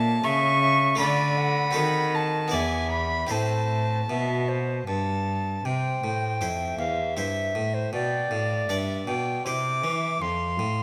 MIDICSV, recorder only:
0, 0, Header, 1, 2, 480
1, 0, Start_track
1, 0, Key_signature, 0, "minor"
1, 0, Tempo, 759494
1, 633, Time_signature, 3, 2, 24, 8
1, 1596, Tempo, 779221
1, 3516, Tempo, 761421
1, 3517, Key_signature, 0, "major"
1, 6786, End_track
2, 0, Start_track
2, 0, Title_t, "Recorder"
2, 0, Program_c, 0, 74
2, 152, Note_on_c, 0, 76, 92
2, 390, Note_off_c, 0, 76, 0
2, 393, Note_on_c, 0, 76, 77
2, 628, Note_off_c, 0, 76, 0
2, 632, Note_on_c, 0, 74, 81
2, 869, Note_on_c, 0, 78, 73
2, 878, Note_off_c, 0, 74, 0
2, 1416, Note_off_c, 0, 78, 0
2, 1599, Note_on_c, 0, 76, 80
2, 2074, Note_on_c, 0, 72, 67
2, 2083, Note_off_c, 0, 76, 0
2, 2511, Note_off_c, 0, 72, 0
2, 2564, Note_on_c, 0, 76, 80
2, 2803, Note_on_c, 0, 72, 68
2, 2812, Note_off_c, 0, 76, 0
2, 3038, Note_off_c, 0, 72, 0
2, 3042, Note_on_c, 0, 81, 79
2, 3522, Note_on_c, 0, 79, 63
2, 3532, Note_off_c, 0, 81, 0
2, 4233, Note_off_c, 0, 79, 0
2, 4237, Note_on_c, 0, 77, 60
2, 4473, Note_off_c, 0, 77, 0
2, 4480, Note_on_c, 0, 76, 65
2, 4839, Note_on_c, 0, 72, 57
2, 4849, Note_off_c, 0, 76, 0
2, 4958, Note_off_c, 0, 72, 0
2, 4963, Note_on_c, 0, 74, 70
2, 5486, Note_off_c, 0, 74, 0
2, 5679, Note_on_c, 0, 79, 66
2, 5917, Note_off_c, 0, 79, 0
2, 5927, Note_on_c, 0, 86, 77
2, 6400, Note_on_c, 0, 84, 70
2, 6409, Note_off_c, 0, 86, 0
2, 6786, Note_off_c, 0, 84, 0
2, 6786, End_track
0, 0, End_of_file